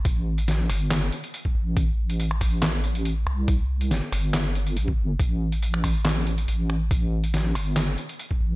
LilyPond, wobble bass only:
\new Staff \with { instrumentName = "Wobble bass" } { \clef bass \time 4/4 \key a \minor \tempo 4 = 140 a,,4. g,,4 r4 a,,8~ | a,,2.~ a,,8 c,8~ | c,4 g,,16 r16 g,,4. a,,8 g,,8 | a,,2. a,,4 |
a,,4. g,,4 r4 a,,8 | }